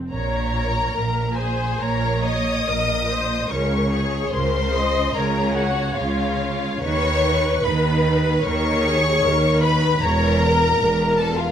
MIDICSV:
0, 0, Header, 1, 6, 480
1, 0, Start_track
1, 0, Key_signature, -5, "minor"
1, 0, Tempo, 851064
1, 63, Time_signature, 4, 2, 24, 8
1, 1505, Tempo, 827586
1, 4385, Tempo, 800000
1, 5345, Tempo, 777202
1, 6754, End_track
2, 0, Start_track
2, 0, Title_t, "Violin section"
2, 0, Program_c, 0, 48
2, 61, Note_on_c, 0, 82, 89
2, 748, Note_off_c, 0, 82, 0
2, 762, Note_on_c, 0, 80, 70
2, 1013, Note_off_c, 0, 80, 0
2, 1024, Note_on_c, 0, 82, 79
2, 1270, Note_off_c, 0, 82, 0
2, 1278, Note_on_c, 0, 87, 93
2, 1987, Note_on_c, 0, 85, 75
2, 1991, Note_off_c, 0, 87, 0
2, 2465, Note_on_c, 0, 84, 91
2, 2467, Note_off_c, 0, 85, 0
2, 2937, Note_off_c, 0, 84, 0
2, 2942, Note_on_c, 0, 82, 78
2, 3171, Note_on_c, 0, 78, 91
2, 3179, Note_off_c, 0, 82, 0
2, 3408, Note_off_c, 0, 78, 0
2, 3410, Note_on_c, 0, 77, 79
2, 3898, Note_on_c, 0, 85, 104
2, 3906, Note_off_c, 0, 77, 0
2, 4381, Note_off_c, 0, 85, 0
2, 4385, Note_on_c, 0, 83, 85
2, 4872, Note_off_c, 0, 83, 0
2, 4875, Note_on_c, 0, 85, 111
2, 5570, Note_off_c, 0, 85, 0
2, 5585, Note_on_c, 0, 83, 106
2, 5818, Note_off_c, 0, 83, 0
2, 5830, Note_on_c, 0, 82, 107
2, 6544, Note_on_c, 0, 81, 86
2, 6549, Note_off_c, 0, 82, 0
2, 6665, Note_off_c, 0, 81, 0
2, 6670, Note_on_c, 0, 77, 81
2, 6754, Note_off_c, 0, 77, 0
2, 6754, End_track
3, 0, Start_track
3, 0, Title_t, "Viola section"
3, 0, Program_c, 1, 48
3, 0, Note_on_c, 1, 60, 30
3, 64, Note_off_c, 1, 60, 0
3, 75, Note_on_c, 1, 73, 62
3, 517, Note_off_c, 1, 73, 0
3, 540, Note_on_c, 1, 70, 60
3, 775, Note_off_c, 1, 70, 0
3, 776, Note_on_c, 1, 72, 62
3, 1020, Note_off_c, 1, 72, 0
3, 1026, Note_on_c, 1, 73, 70
3, 1510, Note_off_c, 1, 73, 0
3, 1510, Note_on_c, 1, 70, 63
3, 1748, Note_off_c, 1, 70, 0
3, 1751, Note_on_c, 1, 72, 61
3, 1987, Note_off_c, 1, 72, 0
3, 1989, Note_on_c, 1, 70, 65
3, 2226, Note_off_c, 1, 70, 0
3, 2236, Note_on_c, 1, 68, 64
3, 2467, Note_off_c, 1, 68, 0
3, 2473, Note_on_c, 1, 70, 65
3, 2712, Note_off_c, 1, 70, 0
3, 2712, Note_on_c, 1, 75, 79
3, 2949, Note_off_c, 1, 75, 0
3, 2958, Note_on_c, 1, 73, 64
3, 3913, Note_off_c, 1, 73, 0
3, 3918, Note_on_c, 1, 71, 81
3, 4858, Note_off_c, 1, 71, 0
3, 4878, Note_on_c, 1, 70, 72
3, 5114, Note_off_c, 1, 70, 0
3, 5116, Note_on_c, 1, 68, 74
3, 5348, Note_off_c, 1, 68, 0
3, 5354, Note_on_c, 1, 70, 83
3, 5588, Note_off_c, 1, 70, 0
3, 5590, Note_on_c, 1, 71, 74
3, 5826, Note_off_c, 1, 71, 0
3, 5834, Note_on_c, 1, 73, 80
3, 6063, Note_off_c, 1, 73, 0
3, 6069, Note_on_c, 1, 70, 83
3, 6754, Note_off_c, 1, 70, 0
3, 6754, End_track
4, 0, Start_track
4, 0, Title_t, "Violin section"
4, 0, Program_c, 2, 48
4, 65, Note_on_c, 2, 70, 68
4, 750, Note_off_c, 2, 70, 0
4, 775, Note_on_c, 2, 68, 65
4, 1018, Note_on_c, 2, 70, 70
4, 1020, Note_off_c, 2, 68, 0
4, 1266, Note_on_c, 2, 75, 78
4, 1267, Note_off_c, 2, 70, 0
4, 1970, Note_off_c, 2, 75, 0
4, 1993, Note_on_c, 2, 73, 64
4, 2460, Note_off_c, 2, 73, 0
4, 2480, Note_on_c, 2, 72, 83
4, 2954, Note_off_c, 2, 72, 0
4, 2956, Note_on_c, 2, 70, 70
4, 3186, Note_off_c, 2, 70, 0
4, 3187, Note_on_c, 2, 66, 65
4, 3416, Note_off_c, 2, 66, 0
4, 3418, Note_on_c, 2, 65, 67
4, 3910, Note_off_c, 2, 65, 0
4, 3912, Note_on_c, 2, 73, 95
4, 4378, Note_off_c, 2, 73, 0
4, 4378, Note_on_c, 2, 71, 70
4, 4859, Note_off_c, 2, 71, 0
4, 4870, Note_on_c, 2, 73, 86
4, 5582, Note_off_c, 2, 73, 0
4, 5583, Note_on_c, 2, 71, 81
4, 5822, Note_off_c, 2, 71, 0
4, 5823, Note_on_c, 2, 70, 89
4, 6545, Note_off_c, 2, 70, 0
4, 6553, Note_on_c, 2, 69, 79
4, 6667, Note_off_c, 2, 69, 0
4, 6667, Note_on_c, 2, 65, 76
4, 6754, Note_off_c, 2, 65, 0
4, 6754, End_track
5, 0, Start_track
5, 0, Title_t, "Cello section"
5, 0, Program_c, 3, 48
5, 62, Note_on_c, 3, 46, 67
5, 477, Note_off_c, 3, 46, 0
5, 527, Note_on_c, 3, 46, 60
5, 955, Note_off_c, 3, 46, 0
5, 1013, Note_on_c, 3, 46, 71
5, 1447, Note_off_c, 3, 46, 0
5, 1502, Note_on_c, 3, 46, 68
5, 1927, Note_off_c, 3, 46, 0
5, 1984, Note_on_c, 3, 49, 72
5, 2409, Note_off_c, 3, 49, 0
5, 2474, Note_on_c, 3, 49, 69
5, 2895, Note_off_c, 3, 49, 0
5, 2951, Note_on_c, 3, 49, 82
5, 3361, Note_off_c, 3, 49, 0
5, 3417, Note_on_c, 3, 49, 74
5, 3851, Note_off_c, 3, 49, 0
5, 3917, Note_on_c, 3, 51, 75
5, 4335, Note_off_c, 3, 51, 0
5, 4397, Note_on_c, 3, 51, 78
5, 4821, Note_off_c, 3, 51, 0
5, 4877, Note_on_c, 3, 51, 86
5, 5293, Note_off_c, 3, 51, 0
5, 5346, Note_on_c, 3, 51, 66
5, 5766, Note_off_c, 3, 51, 0
5, 5825, Note_on_c, 3, 40, 90
5, 6248, Note_off_c, 3, 40, 0
5, 6310, Note_on_c, 3, 40, 86
5, 6733, Note_off_c, 3, 40, 0
5, 6754, End_track
6, 0, Start_track
6, 0, Title_t, "Double bass section"
6, 0, Program_c, 4, 48
6, 65, Note_on_c, 4, 34, 72
6, 478, Note_off_c, 4, 34, 0
6, 537, Note_on_c, 4, 34, 60
6, 961, Note_off_c, 4, 34, 0
6, 1019, Note_on_c, 4, 34, 63
6, 1450, Note_off_c, 4, 34, 0
6, 1508, Note_on_c, 4, 34, 58
6, 1930, Note_off_c, 4, 34, 0
6, 1983, Note_on_c, 4, 37, 75
6, 2408, Note_off_c, 4, 37, 0
6, 2465, Note_on_c, 4, 37, 68
6, 2891, Note_off_c, 4, 37, 0
6, 2950, Note_on_c, 4, 37, 73
6, 3360, Note_off_c, 4, 37, 0
6, 3419, Note_on_c, 4, 37, 59
6, 3852, Note_off_c, 4, 37, 0
6, 3906, Note_on_c, 4, 39, 75
6, 4329, Note_off_c, 4, 39, 0
6, 4388, Note_on_c, 4, 39, 69
6, 4816, Note_off_c, 4, 39, 0
6, 4870, Note_on_c, 4, 39, 77
6, 5290, Note_off_c, 4, 39, 0
6, 5345, Note_on_c, 4, 39, 70
6, 5765, Note_off_c, 4, 39, 0
6, 5823, Note_on_c, 4, 28, 85
6, 6247, Note_off_c, 4, 28, 0
6, 6305, Note_on_c, 4, 28, 74
6, 6730, Note_off_c, 4, 28, 0
6, 6754, End_track
0, 0, End_of_file